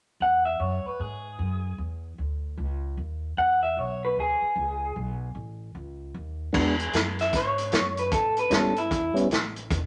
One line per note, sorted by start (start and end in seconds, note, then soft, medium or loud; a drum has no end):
0.20 0.59 E2 medium
0.20 0.45 F#5 medium
0.45 0.60 E5 medium
0.60 0.83 F#2 medium
0.60 0.86 C#5 medium
0.85 1.01 B4 medium
0.85 muted upright bass stroke soft
0.99 1.38 G#2 medium
0.99 1.77 G#4 medium
1.39 1.77 F#2 medium
1.78 2.17 E2 medium
2.18 2.57 D2 medium
2.57 2.96 C#2 medium
2.97 3.36 D#2 medium
3.37 3.76 E2 medium
3.37 3.62 F#5 medium
3.63 3.79 E5 medium
3.77 4.15 B1 medium
3.77 4.02 C#5 medium
4.05 4.17 B4 medium
4.16 4.39 D2 medium
4.20 4.95 G#4 medium
4.41 muted upright bass stroke soft
4.56 4.94 C#2 medium
4.96 5.34 B1 medium
5.35 5.73 A1 medium
5.75 6.13 C#2 medium
6.15 6.53 D#2 medium
6.53 6.93 E2 medium
6.53 6.76 G#3 medium
6.53 6.76 B3 soft
6.53 6.76 D4 soft
6.53 6.76 F#4 medium
6.53 kick loud
6.53 crash medium
6.79 closed hi-hat medium
6.93 7.32 F#2 medium
6.93 snare loud
6.93 closed hi-hat medium
7.19 7.34 E5 medium
7.19 snare soft
7.19 closed hi-hat medium
7.33 7.72 G#2 medium
7.33 7.97 C#5 medium
7.33 kick loud
7.33 snare soft
7.33 closed hi-hat medium
7.58 closed hi-hat medium
7.72 8.11 F#2 medium
7.72 snare loud
7.72 closed hi-hat medium
7.97 8.12 B4 medium
7.97 closed hi-hat medium
8.11 8.50 A2 medium
8.11 8.37 A4 medium
8.11 kick loud
8.11 closed hi-hat medium
8.37 8.53 B4 medium
8.37 closed hi-hat medium
8.50 8.89 G2 medium
8.50 8.73 G3 medium
8.50 8.74 B3 medium
8.50 8.73 C#4 medium
8.50 8.74 E4 medium
8.50 8.77 A4 medium
8.50 snare loud
8.50 closed hi-hat medium
8.76 9.16 E4 medium
8.76 closed hi-hat medium
8.91 9.14 E2 medium
8.91 kick loud
8.91 closed hi-hat medium
9.14 9.28 G3 medium
9.14 9.28 B3 medium
9.14 9.29 C#4 medium
9.14 9.29 E4 medium
9.14 muted upright bass stroke soft
9.14 closed hi-hat medium
9.30 9.69 A1 medium
9.30 snare loud
9.30 closed hi-hat medium
9.56 closed hi-hat medium
9.70 9.86 E1 medium
9.70 kick loud
9.70 closed hi-hat medium